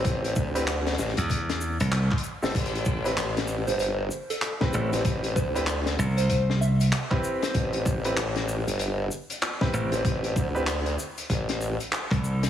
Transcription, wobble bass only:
X:1
M:4/4
L:1/16
Q:"Swing 16ths" 1/4=96
K:Am
V:1 name="Wobble bass" clef=bass
A,,,2 D,,4 A,,, z8 G,,, | A,,,4 A,,,3 G,,,3 z4 z A,,,- | A,,,2 D,,4 z8 z2 | A,,,4 A,,,3 G,,,3 z4 z A,,,- |
A,,,2 D,,4 z2 A,,,3 z4 z |]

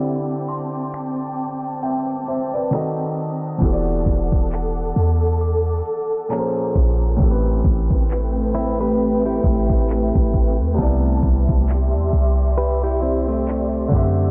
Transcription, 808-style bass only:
X:1
M:4/4
L:1/16
Q:"Swing 16ths" 1/4=67
K:Clyd
V:1 name="808-style bass" clef=bass
z16 | E,,,2 E,,,4 E,,4 z4 ^A,,,2 | A,,,2 A,,,8 A,,,3 A,,,2 E,, | C,,2 C,, C,,2 E,, C,,8 F,,2 |]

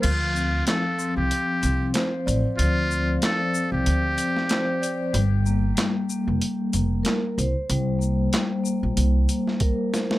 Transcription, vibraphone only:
X:1
M:4/4
L:1/8
Q:"Swing 16ths" 1/4=94
K:Dm
V:1 name="Vibraphone"
F, C F, C2 C c d | F, C F, C2 C c d | G, B, G, B,2 B, B c | G, B, G, B,2 B, B c |]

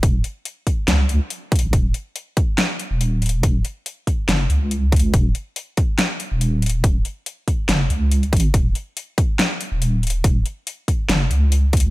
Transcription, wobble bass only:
X:1
M:4/4
L:1/16
Q:"Swing 16ths" 1/4=141
K:Ebm
V:1 name="Wobble bass" clef=bass
E,,,2 z6 D,,3 z4 B,,, | E,,,2 z8 z E,,,4- E,,, | E,,,2 z6 G,,,2 D,,6 | E,,,2 z8 z E,,,4- E,,, |
E,,,2 z6 G,,,2 D,,4 A,,,2 | E,,,2 z8 z E,,,4- E,,, | E,,,2 z6 G,,,2 D,,6 |]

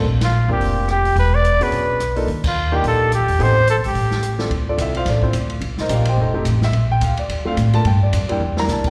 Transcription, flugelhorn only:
X:1
M:4/4
L:1/8
Q:"Swing" 1/4=215
K:Bb
V:1 name="Flugelhorn"
z F2 G3 G2 | =B d2 B4 z | z F2 G A2 G2 | c2 A G4 z |
[K:Dm] z8 | z8 | z8 | z8 |]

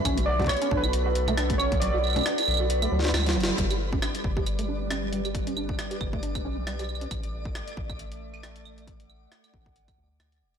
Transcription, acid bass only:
X:1
M:4/4
L:1/16
Q:"Swing 16ths" 1/4=136
K:Glyd
V:1 name="Acid bass"
C D, F, F z C D F z F z A, D F, C D, | F, F z C D F z F z A, F, D F, F, F, F, | G, G z C D G z G z A, D G, C D, G, G | z C D G z G z A, D G, C D, G, G z C |
z16 | z16 |]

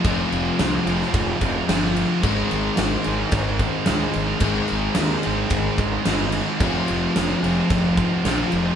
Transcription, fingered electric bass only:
X:1
M:4/4
L:1/8
Q:1/4=110
K:Fm
V:1 name="Fingered electric bass" clef=bass
F,,, F,,, C,, F,,, F,,, F,,, G,,,2 | A,,, A,,, A,,, A,,, A,,,2 D,, A,,, | A,,, A,,, E,, A,,, A,,, A,,, G,,,2 | F,,, F,,, F,,, F,,, F,,,2 B,,, F,,, |]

